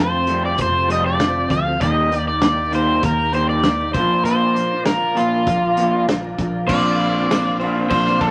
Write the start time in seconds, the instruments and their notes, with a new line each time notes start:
Already playing: twelve-string acoustic guitar F2 C3 F3 A3 C4, fretless electric bass F2, tonewheel organ F4 C5 G5 A5
0.00 twelve-string acoustic guitar G4, electric slide guitar C5
0.26 twelve-string acoustic guitar F3 A3 C4 G4, clean electric guitar G3, closed hi-hat
0.41 twelve-string acoustic guitar F3 A3 C4 G4
0.46 electric slide guitar D5
0.58 fretless electric bass F1, clean electric guitar F3 A3, electric slide guitar C5, kick, closed hi-hat
0.72 twelve-string acoustic guitar F3 A3 C4 G4
0.88 clean electric guitar F3 G3 A3, closed hi-hat
0.92 electric slide guitar D#5
1.02 twelve-string acoustic guitar F3 A3 C4 G4
1.06 electric slide guitar D5
1.17 twelve-string acoustic guitar F2 C3 F3 A3 C4 G4, snare, closed hi-hat
1.48 fretless electric bass D2, twelve-string acoustic guitar F3 A3 C4 G4, electric slide guitar F5, kick, closed hi-hat
1.65 twelve-string acoustic guitar F3 A3 C4 G4
1.80 fretless electric bass D#2, twelve-string acoustic guitar D#3 A#3 D#4 G4, clean electric guitar G3, tonewheel organ D#4 A#4 G5 A#5, electric slide guitar D#5, kick, closed hi-hat
1.96 twelve-string acoustic guitar A#3 D#4 G4
2.11 twelve-string acoustic guitar D#3 A#3 D#4 G4, closed hi-hat
2.25 twelve-string acoustic guitar A#3 D#4 G4, electric slide guitar D5
2.39 twelve-string acoustic guitar D#3 A#3 D#4 G4, snare, closed hi-hat
2.71 twelve-string acoustic guitar D#3 A#3 D#4 G4, clean electric guitar G3, closed hi-hat
2.75 electric slide guitar C5
2.87 twelve-string acoustic guitar A#3 D#4 G4
3.02 fretless electric bass D#2, clean electric guitar D#3 A#3, electric slide guitar A#4, kick, closed hi-hat
3.17 twelve-string acoustic guitar A#3 D#4 G4
3.32 clean electric guitar D#3 G3 A#3, electric slide guitar C5, closed hi-hat
3.49 twelve-string acoustic guitar A#3 D#4 G4, electric slide guitar D5
3.64 twelve-string acoustic guitar D#3 A#3 D#4 G4, snare, closed hi-hat
3.94 fretless electric bass A#1, clean electric guitar A#2, twelve-string acoustic guitar F3 A#3 D4 F4, tonewheel organ F4 A#4 D5, electric slide guitar C5, kick, closed hi-hat
4.11 twelve-string acoustic guitar A#3 D4 F4
4.23 fretless electric bass A#2, twelve-string acoustic guitar A#2 F3, electric slide guitar C5, closed hi-hat
4.27 twelve-string acoustic guitar A#3 D4 F4
4.41 twelve-string acoustic guitar A#3 D4 F4
4.55 clean electric guitar A#2, twelve-string acoustic guitar F3 A#3 D4, closed hi-hat
4.59 twelve-string acoustic guitar F4
4.72 twelve-string acoustic guitar A#3 D4 F4
4.86 twelve-string acoustic guitar A#2 F3 A#3 D4 F4, electric slide guitar A#4, snare, closed hi-hat
5.15 clean electric guitar A#2, twelve-string acoustic guitar F3 A#3 D4, electric slide guitar F4, closed hi-hat
5.20 twelve-string acoustic guitar F4
5.32 twelve-string acoustic guitar A#3 D4 F4
5.46 fretless electric bass A#1, clean electric guitar A#2 F3, kick, closed hi-hat
5.61 twelve-string acoustic guitar A#3 D4 F4
5.77 clean electric guitar A#2 F3 A#3, closed hi-hat
5.92 twelve-string acoustic guitar A#3 D4 F4
6.08 twelve-string acoustic guitar A#2 F3 A#3 D4 F4, snare, closed hi-hat
6.38 fretless electric bass A#1, clean electric guitar A#2, twelve-string acoustic guitar F3 A#3 D4 F4, kick, closed hi-hat
6.67 fretless electric bass A#1, twelve-string acoustic guitar A#2 F3 C4 D4 F4, clean electric guitar A#3 C5, tonewheel organ A#3 D5 F5 C6, electric slide guitar D5, kick, crash
7.00 crash
7.15 twelve-string acoustic guitar C4 D4 F4
7.31 twelve-string acoustic guitar A#2 F3 C4 D4 F4, snare, tambourine, crash
7.44 twelve-string acoustic guitar C4 D4 F4
7.60 clean electric guitar D4 F4 C5, crash
7.64 clean electric guitar A#3
7.75 twelve-string acoustic guitar C4 D4 F4
7.90 fretless electric bass A#1, electric slide guitar C5, kick, crash
8.05 twelve-string acoustic guitar C4 D4 F4, snare
8.19 fretless electric bass A#1, twelve-string acoustic guitar F3 C4 D4 F4, electric slide guitar A4, kick, crash